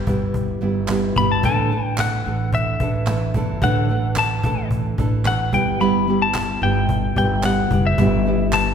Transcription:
0.07 0.58 G1 loud
0.07 0.60 G3 medium
0.07 0.61 B3 medium
0.07 0.62 E4 medium
0.07 0.62 G4 medium
0.07 cajon bass medium
0.20 cajon slap soft
0.34 cajon bass medium
0.48 cajon slap soft
0.61 1.12 G1 medium
0.61 0.87 G3 medium
0.61 0.88 B3 medium
0.61 0.89 E4 medium
0.61 0.90 G4 medium
0.61 cajon slap soft
0.76 cajon slap soft
0.88 1.15 G3 medium
0.88 1.16 B3 medium
0.88 1.17 E4 medium
0.88 1.17 G4 medium
0.88 cajon slap loud
0.88 clap medium
1.16 1.41 G1 medium
1.16 1.43 G3 medium
1.16 1.44 B3 medium
1.16 1.44 E4 medium
1.16 1.45 G4 medium
1.16 1.30 B5 loud
1.16 cajon bass medium
1.30 1.44 A5 loud
1.30 cajon slap soft
1.43 2.21 A1 loud
1.43 1.71 A2 medium
1.43 1.71 D3 medium
1.43 1.69 E3 medium
1.43 1.71 A3 medium
1.43 1.71 D4 medium
1.43 1.72 A4 loud
1.43 1.95 A5 loud
1.43 cajon bass loud
1.71 2.25 E3 medium
1.71 2.25 A3 medium
1.71 2.26 D4 medium
1.71 2.26 A4 medium
1.71 cajon slap soft
1.98 2.50 F#5 medium
1.98 cajon slap loud
1.98 clap loud
2.26 2.76 A1 medium
2.26 2.79 E3 medium
2.26 2.80 A3 medium
2.26 2.81 D4 medium
2.26 2.81 A4 medium
2.26 cajon slap soft
2.53 3.66 E5 loud
2.53 cajon bass medium
2.80 3.31 A1 medium
2.80 3.06 E3 medium
2.80 3.07 A3 medium
2.80 3.08 D4 medium
2.80 3.08 A4 medium
2.80 cajon bass medium
3.07 3.33 E3 medium
3.07 3.34 A3 medium
3.07 3.36 D4 medium
3.07 3.36 A4 medium
3.07 cajon slap loud
3.07 clap medium
3.34 3.60 G1 medium
3.34 3.61 E3 medium
3.34 3.62 A3 medium
3.34 3.62 D4 medium
3.34 3.62 A4 medium
3.34 cajon bass medium
3.48 cajon slap soft
3.62 4.40 A1 loud
3.62 3.89 A2 medium
3.62 3.89 D3 medium
3.62 3.88 E3 loud
3.62 3.89 A3 medium
3.62 3.89 D4 medium
3.62 3.90 A4 loud
3.62 4.14 F#5 loud
3.62 cajon bass loud
3.89 4.43 E3 medium
3.89 4.43 A3 medium
3.89 4.44 D4 medium
3.89 4.45 A4 medium
3.89 cajon slap soft
4.16 4.68 A5 medium
4.16 cajon slap loud
4.16 clap loud
4.43 4.94 A1 loud
4.43 4.97 E3 medium
4.43 4.98 A3 medium
4.43 4.98 D4 medium
4.43 4.99 A4 medium
4.43 cajon bass loud
4.71 cajon bass medium
4.98 5.49 A1 loud
4.98 5.24 E3 medium
4.98 5.25 A3 medium
4.98 5.26 D4 medium
4.98 5.27 A4 medium
4.98 cajon bass medium
5.25 5.52 E3 medium
5.25 5.53 A3 medium
5.25 5.54 D4 medium
5.25 5.54 A4 medium
5.25 5.54 F#5 loud
5.25 cajon slap loud
5.25 clap medium
5.52 6.58 G1 medium
5.52 5.79 G3 medium
5.52 5.80 B3 medium
5.52 5.81 E4 medium
5.52 5.81 G4 medium
5.52 5.81 G5 medium
5.52 cajon bass loud
5.67 cajon slap soft
5.80 6.06 G3 loud
5.80 6.07 B3 medium
5.80 6.08 E4 medium
5.80 6.08 G4 loud
5.80 6.22 B5 loud
5.80 cajon slap soft
6.07 6.60 G3 medium
6.07 6.61 B3 medium
6.07 6.62 E4 medium
6.07 6.63 G4 medium
6.07 cajon slap soft
6.22 6.63 A5 loud
6.34 cajon slap loud
6.34 clap loud
6.62 7.12 G1 loud
6.62 7.15 G3 medium
6.62 7.16 B3 medium
6.62 7.16 E4 medium
6.62 7.17 G4 medium
6.62 7.17 G5 medium
6.62 cajon slap soft
6.89 cajon bass loud
7.16 7.67 G1 loud
7.16 7.42 G3 medium
7.16 7.43 B3 medium
7.16 7.44 E4 medium
7.16 7.45 G4 medium
7.16 7.45 G5 medium
7.16 cajon bass medium
7.43 7.70 G3 medium
7.43 7.71 B3 medium
7.43 7.71 E4 medium
7.43 7.72 G4 medium
7.43 7.87 F#5 medium
7.43 cajon slap loud
7.43 clap medium
7.71 7.96 F#1 loud
7.71 7.97 G3 medium
7.71 7.98 B3 medium
7.71 7.98 E4 medium
7.71 7.99 G4 medium
7.71 cajon bass medium
7.84 8.56 E5 medium
7.84 cajon slap soft
7.98 8.74 G1 loud
7.98 8.24 G3 medium
7.98 8.25 B3 loud
7.98 8.26 E4 loud
7.98 8.27 G4 medium
7.98 cajon bass loud
8.25 8.74 G3 medium
8.25 8.74 B3 medium
8.25 8.74 E4 medium
8.25 8.74 G4 medium
8.25 cajon slap soft
8.40 cajon slap soft
8.53 8.74 A5 medium
8.53 cajon slap loud
8.53 clap loud

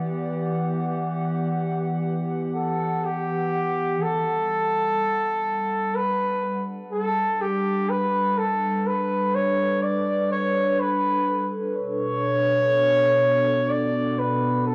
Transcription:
0.00 4.01 E3 medium
0.00 7.04 B3 medium
0.00 4.00 G4 medium
0.00 5.24 D5 medium
0.00 13.54 F#5 medium
2.55 3.06 A4 medium
3.05 4.04 G4 medium
4.00 11.75 G3 medium
4.00 5.97 A4 loud
4.67 14.75 D4 medium
4.84 14.75 A4 medium
5.96 6.65 B4 medium
6.92 7.43 A4 medium
7.41 7.91 G4 medium
7.50 14.75 B4 medium
7.90 8.39 B4 loud
8.38 8.88 A4 medium
8.87 9.37 B4 medium
9.35 9.84 C#5 medium
9.82 10.30 D5 medium
10.32 10.81 C#5 medium
10.80 11.49 B4 medium
11.75 14.75 B2 medium
11.75 13.71 C#5 loud
12.16 14.75 B3 medium
13.69 14.20 D5 medium
14.19 14.66 B4 medium
14.67 14.75 A4 loud

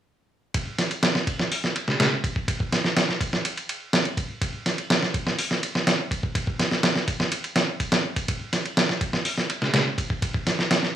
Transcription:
0.54 kick loud
0.54 ride medium
0.79 snare soft
0.79 ride medium
0.91 ride soft
1.03 snare loud
1.03 ride medium
1.15 snare soft
1.27 kick medium
1.27 ride medium
1.39 snare soft
1.52 open hi-hat medium
1.64 snare soft
1.76 ride medium
1.88 snare soft
2.00 snare loud
2.00 ride medium
2.24 kick medium
2.24 ride medium
2.36 kick medium
2.48 kick loud
2.48 ride medium
2.60 kick medium
2.72 snare medium
2.72 ride medium
2.84 snare soft
2.97 snare loud
2.97 ride medium
3.09 snare soft
3.21 kick medium
3.21 ride medium
3.33 snare soft
3.45 ride medium
3.57 ride soft
3.69 ride medium
3.93 snare loud
3.93 ride medium
4.05 ride soft
4.17 kick medium
4.17 ride medium
4.42 kick loud
4.42 ride medium
4.66 snare soft
4.66 ride medium
4.78 ride soft
4.90 snare loud
4.90 ride medium
5.03 snare soft
5.14 kick medium
5.14 ride medium
5.27 snare soft
5.39 open hi-hat medium
5.51 snare soft
5.63 ride medium
5.75 snare soft
5.87 snare loud
5.87 ride medium
6.11 kick medium
6.11 ride medium
6.23 kick medium
6.35 kick loud
6.35 ride medium
6.47 kick medium
6.59 snare medium
6.59 ride medium
6.71 snare soft
6.83 snare loud
6.83 ride medium
6.96 snare soft
7.08 kick medium
7.08 ride medium
7.20 snare soft
7.32 ride medium
7.44 ride soft
7.56 snare loud
7.56 ride medium
7.80 kick medium
7.80 ride medium
7.92 snare loud
7.92 ride medium
8.16 kick medium
8.16 ride medium
8.28 kick loud
8.28 ride medium
8.53 snare soft
8.53 ride medium
8.66 ride soft
8.77 snare loud
8.77 ride medium
8.89 snare soft
9.01 kick medium
9.01 ride medium
9.13 snare soft
9.25 open hi-hat medium
9.38 snare soft
9.50 ride medium
9.62 snare soft
9.74 snare loud
9.74 ride medium
9.98 kick medium
9.98 ride medium
10.10 kick medium
10.22 kick loud
10.22 ride medium
10.34 kick medium
10.47 snare medium
10.47 ride medium
10.59 snare soft
10.71 snare loud
10.71 ride medium
10.83 snare soft

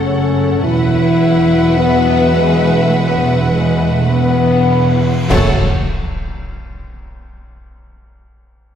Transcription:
0.00 0.59 F#1 medium
0.00 0.58 F#2 medium
0.00 0.58 C#3 medium
0.00 0.59 A3 medium
0.00 0.63 C#4 medium
0.00 0.59 A4 medium
0.00 0.59 C#5 soft
0.00 0.59 F#5 medium
0.61 5.06 E1 medium
0.61 5.05 E2 medium
0.61 4.95 B2 medium
0.61 4.95 F#3 medium
0.61 1.76 E4 loud
0.61 5.09 B4 medium
0.61 5.09 E5 medium
0.61 5.05 F#5 medium
1.78 2.37 B3 loud
2.37 2.79 G#3 loud
2.82 2.96 A3 medium
2.95 3.34 B3 loud
2.95 cymbal swell medium
3.51 3.95 G#3 medium
3.98 4.12 A3 medium
4.10 5.29 B3 loud
5.28 5.63 F#1 medium
5.28 5.62 F#2 medium
5.28 5.54 C#3 medium
5.28 5.54 F#3 medium
5.28 5.54 A3 medium
5.28 5.63 A4 medium
5.28 5.62 C#5 medium
5.28 5.63 F#5 medium
5.28 concert bass drum medium
5.28 crash medium
5.28 impact medium

